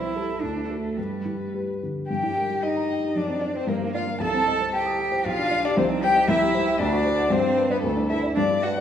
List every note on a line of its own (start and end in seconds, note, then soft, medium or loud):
0.00 0.41 C2 medium
0.00 0.42 E4 medium
0.00 0.15 C5 medium
0.16 0.40 G4 soft
0.16 0.40 A4 soft
0.16 0.42 A4 medium
0.41 0.96 D2 soft
0.41 0.71 D4 medium
0.41 0.99 A4 medium
0.70 0.98 A3 medium
0.70 0.95 F#4 soft
0.70 0.95 A4 soft
0.97 2.06 G2 soft
0.97 1.53 G3 medium
0.97 1.81 B4 medium
1.26 1.70 G3 soft
1.54 1.79 G4 soft
1.54 1.79 B4 soft
1.83 2.10 D3 soft
2.08 3.13 G2 medium
2.08 2.65 G4 medium
2.08 2.64 G5 medium
2.23 2.44 G3 medium
2.37 2.57 A#4 soft
2.49 2.70 G4 medium
2.63 3.18 D#4 medium
2.63 3.18 D#5 medium
2.63 2.84 G5 soft
2.77 2.97 A#5 medium
2.91 3.11 G5 medium
3.03 3.16 G4 soft
3.15 3.67 F#2 medium
3.15 3.57 D4 medium
3.15 3.55 D5 medium
3.28 3.50 C4 soft
3.41 3.63 D5 medium
3.54 3.71 C4 medium
3.54 3.68 C5 soft
3.54 3.67 C5 medium
3.67 4.19 G2 medium
3.67 3.94 A#3 medium
3.67 3.76 A#4 medium
3.81 4.02 A#3 medium
3.94 4.02 F4 medium
3.94 4.16 D5 medium
3.94 4.20 F5 medium
4.07 4.21 A#4 medium
4.20 5.23 C2 medium
4.20 4.73 A4 loud
4.20 4.76 A5 loud
4.34 4.56 C4 medium
4.47 4.69 D#5 medium
4.60 4.82 C5 medium
4.73 5.27 G4 medium
4.73 4.95 G5 medium
4.73 5.26 G5 medium
4.86 5.08 D#6 medium
4.99 5.21 G5 medium
5.12 5.26 C5 medium
5.25 5.76 B1 medium
5.25 5.64 F4 loud
5.25 5.66 F5 loud
5.38 5.59 D4 medium
5.51 5.72 D5 medium
5.64 5.79 D4 medium
5.64 5.78 G4 medium
5.64 5.77 D5 loud
5.77 6.27 C2 medium
5.77 6.05 C4 medium
5.77 5.86 C5 medium
5.89 6.10 D#4 medium
6.03 6.31 G4 loud
6.03 6.24 C5 medium
6.03 6.28 G5 loud
6.15 6.29 D#5 medium
6.28 6.79 C2 medium
6.28 6.81 E4 loud
6.28 6.81 E5 loud
6.42 6.63 G4 medium
6.55 6.75 C5 medium
6.66 6.80 G5 medium
6.80 7.30 D2 medium
6.80 7.33 D4 medium
6.80 7.33 D5 loud
6.92 7.14 F#4 medium
7.05 7.27 C5 medium
7.18 7.32 F#5 medium
7.30 7.82 G2 medium
7.30 7.72 C4 medium
7.30 7.70 C5 loud
7.43 7.65 D4 medium
7.57 7.78 B4 medium
7.70 7.83 B3 medium
7.70 7.82 B4 loud
7.70 7.84 D5 medium
7.82 8.35 D2 medium
7.82 8.09 A3 medium
7.82 8.09 A4 medium
7.96 8.18 D4 medium
8.09 8.35 E4 medium
8.09 8.32 A4 medium
8.09 8.17 E5 loud
8.23 8.37 D5 medium
8.35 8.80 G2 medium
8.35 8.43 D4 medium
8.35 8.65 D5 loud
8.51 8.72 D4 medium
8.62 8.70 F#4 medium
8.62 8.80 B4 medium
8.62 8.80 F#5 loud